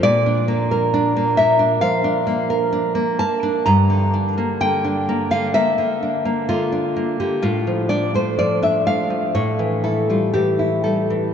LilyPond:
\new Staff \with { instrumentName = "Nylon-string guitar" } { \time 4/4 \key g \dorian \tempo 4 = 64 << { d''4. e''8 f''4. a''8 | bes''4 g''8. f''16 e''4 f'8. g'16 | f'8 d''16 c''16 d''16 e''16 f''8 cis''8 a'16 f'16 g'8 a'8 | } \\ { bes,16 d'16 bes16 bes'16 d'16 bes16 bes'16 d'16 f16 d'16 bes16 bes'16 d'16 bes16 bes'16 d'16 | g,16 d16 d'16 bes16 d16 d'16 bes16 d16 bes16 d16 d'16 bes16 d16 d'16 bes16 d16 | a,16 f16 d'16 a16 f16 d'16 a16 f16 a,16 e16 e'16 g16 e16 e'16 g16 e16 | } >> }